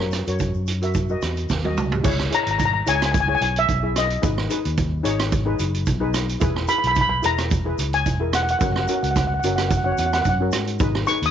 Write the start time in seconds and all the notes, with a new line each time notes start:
Already playing: F#2 A#4 C#5
0.00 cross-stick
0.11 cross-stick, closed hi-hat, shaker
0.27 F#2 F#4 A#4 C#5, closed hi-hat, shaker
0.39 kick, closed hi-hat, shaker
0.54 F#2, shaker
0.67 closed hi-hat, shaker
0.82 F#4 A#4 E5, closed hi-hat, shaker
0.94 kick, closed hi-hat, shaker
1.09 F#4 A#4 D#5, shaker
1.22 E2, cross-stick, closed hi-hat, shaker
1.37 closed hi-hat, shaker
1.49 D#2, kick, snare, shaker
1.64 F#4 A#4 D#5, high tom
1.77 C#2, mid tom, shaker
1.92 floor tom, shaker
2.03 C#2 E4 G#4 C#5, kick, crash, shaker
2.19 cross-stick
2.31 E4 G#4 C#5 A#5, closed hi-hat
2.47 G#1, closed hi-hat
2.51 A#5
2.58 A#5, kick, closed hi-hat, shaker
2.65 A#5
2.74 A#5
2.86 C#2 E4 G#4 C#5 G#5, closed hi-hat, shaker
2.96 G#5
3.01 cross-stick, closed hi-hat, shaker
3.06 G#5
3.12 G#5, kick, closed hi-hat, shaker
3.20 G#5
3.27 E4 G#4 C#5 G#5
3.35 G#5
3.41 B1 G#5, closed hi-hat
3.56 E5, closed hi-hat
3.69 B1, kick, closed hi-hat, shaker
3.83 E4 G#4 E5
3.96 D#5, cross-stick, closed hi-hat, shaker
4.10 closed hi-hat, shaker
4.22 G#1 D#4 G#4 B4, kick, closed hi-hat, shaker
4.38 cross-stick
4.50 D#4 G#4 B4, closed hi-hat, shaker
4.65 D#2, closed hi-hat
4.77 kick, closed hi-hat, shaker
5.03 G#1 D#4 G#4 C#5, closed hi-hat, shaker
5.20 cross-stick, closed hi-hat, shaker
5.32 kick, closed hi-hat, shaker
5.45 D#4 G#4 B4
5.59 F#1, closed hi-hat, shaker
5.74 closed hi-hat
5.86 B1, kick, closed hi-hat, shaker
6.00 D#4 G#4 B4
6.14 cross-stick, closed hi-hat, shaker
6.29 closed hi-hat, shaker
6.40 E1 E4 G#4 B4, kick, closed hi-hat, shaker
6.56 cross-stick
6.68 E4 G#4 B4 B5, closed hi-hat, shaker
6.78 B5
6.84 B1 B5, closed hi-hat
6.92 B5, shaker
6.96 kick, closed hi-hat
7.01 B5
7.09 B5
7.22 E1 E4 G#4 B4 A#5, closed hi-hat, shaker
7.38 cross-stick, closed hi-hat, shaker
7.50 kick, closed hi-hat, shaker
7.65 E4 G#4 B4
7.78 C#2, closed hi-hat, shaker
7.93 G#5, closed hi-hat
8.06 E1, kick, closed hi-hat, shaker
8.20 E4 G#4 A#4
8.33 F#5, cross-stick, closed hi-hat, shaker
8.43 F#5
8.48 F#5, closed hi-hat, shaker
8.59 F#1 C#4 F#4 A#4 F#5, kick, closed hi-hat, shaker
8.64 F#5
8.72 F#5, cross-stick
8.80 F#5
8.88 C#4 F#4 A#4 F#5, closed hi-hat, shaker
8.95 F#5
9.03 C#2 F#5, closed hi-hat, shaker
9.11 F#5
9.16 F#5, kick, cross-stick, closed hi-hat, shaker
9.27 F#5
9.34 F#5
9.40 F#1 F#5, closed hi-hat, shaker
9.44 C#4 F#4 A#4 F#5
9.56 F#5, cross-stick, closed hi-hat, shaker
9.62 F#5
9.69 F#5, kick, closed hi-hat, shaker
9.77 F#5
9.84 C#4 F#4 C#5 F#5
9.92 F#5
9.98 E2 F#5, closed hi-hat, shaker
10.06 F#5
10.12 F#5, cross-stick, closed hi-hat, shaker
10.22 F#2 F#5, kick, closed hi-hat, shaker
10.29 F#5
10.40 C#4 F#4 A#4
10.52 G#2, cross-stick, closed hi-hat, shaker
10.67 closed hi-hat, shaker
10.79 G#1 D#4 G#4 B4, kick, closed hi-hat, shaker
10.95 cross-stick
11.07 D#4 G#4 B4 C#6, closed hi-hat, shaker
11.22 D#2 D#6, closed hi-hat